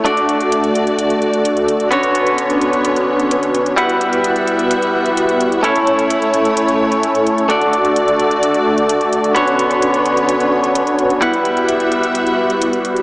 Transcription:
<<
  \new Staff \with { instrumentName = "String section" } { \time 4/4 \key b \minor \tempo 4 = 129 <a fis' d''>1 | <d b cis''>1 | <g e'' fis''>1 | <a e' cis''>1 |
<a fis' d''>1 | <d b cis''>1 | <g e'' fis''>1 | }
  \new Staff \with { instrumentName = "Supersaw synth" } { \time 4/4 \key b \minor <a d' fis' a' d''>1 | <cis' d' fis' b' cis''>1 | <b e' fis' g' b'>1 | <a cis' e' a' cis''>1 |
<a d' fis' a' d''>1 | <cis' d' fis' b' cis''>1 | <b e' fis' g' b'>1 | }
  \new Staff \with { instrumentName = "Clean electric guitar" } { \time 4/4 \key b \minor <a d' fis' d''>1 | <d b fis' cis''>1 | <g e' b' fis''>1 | <a cis' e' cis''>1 |
<a d' fis' d''>1 | <d b fis' cis''>1 | <g e' b' fis''>1 | }
  \new DrumStaff \with { instrumentName = "Drums" } \drummode { \time 4/4 hh16 hh16 hh16 hh16 hh16 hh16 hh16 hh16 hh16 hh16 hh16 hh16 hh16 hh16 hh16 hh16 | hh16 hh16 hh16 hh16 hh16 hh16 hh16 hh16 hh16 hh8 hh16 hh16 hh16 hh16 hh16 | hh16 hh16 hh16 hh16 hh16 hh16 hh16 hh16 hh16 hh8 hh16 hh16 hh16 hh16 hh16 | hh16 hh16 hh16 hh16 hh16 hh16 hh16 hh16 hh16 hh8 hh16 hh16 hh16 hh16 hh16 |
hh16 hh16 hh16 hh16 hh16 hh16 hh16 hh16 hh16 hh8 hh16 hh16 hh16 hh16 hh16 | hh16 hh16 hh16 hh16 hh16 hh16 hh16 hh16 hh16 hh8 hh16 hh16 hh16 hh16 hh16 | hh16 hh16 hh16 hh16 hh16 hh16 hh16 hh16 hh16 hh8 hh16 hh16 hh16 hh16 hh16 | }
>>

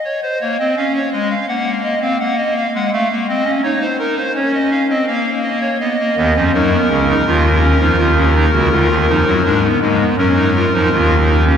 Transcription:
<<
  \new Staff \with { instrumentName = "Pipe organ" } { \time 4/4 \key ees \minor \tempo 4 = 83 << { des''16 c''16 des''16 ees''16 f''16 des''16 ees''16 f''16 ges''8 ees''16 f''16 ges''16 ees''16 f''16 ges''16 | f''8 ees''8 des''16 c''16 bes'16 c''16 des''16 ees''16 f''16 ees''16 f''8 ees''16 des''16 | ees''4 bes'2.~ | bes'2 bes'2 | } \\ { r8 bes16 c'16 des'8 aes8 bes8. c'16 bes8. aes16 | a16 bes16 c'16 des'16 ees'8 ees'8 des'8. c'16 bes4 | ces'16 bes16 ces'16 des'16 ees'16 ces'16 des'16 ees'16 f'8 des'16 ees'16 f'16 des'16 ees'16 ges'16 | f'8 ees'8 d'16 ces'16 bes16 ces'16 des'16 ees'16 f'16 ees'16 f'8 ees'16 des'16 | } >> }
  \new Staff \with { instrumentName = "Pipe organ" } { \clef bass \time 4/4 \key ees \minor r1 | r1 | r8 <ees, ees>16 <f, f>16 <ges, ges>8 <des, des>8 <ees, ees>8. <f, f>16 <ees, ees>8. <des, des>16 | <d, d>16 <ees, ees>16 <f, f>16 <ges, ges>16 <aes, aes>8 <aes, aes>8 <ges, ges>8. <f, f>16 <ees, ees>4 | }
>>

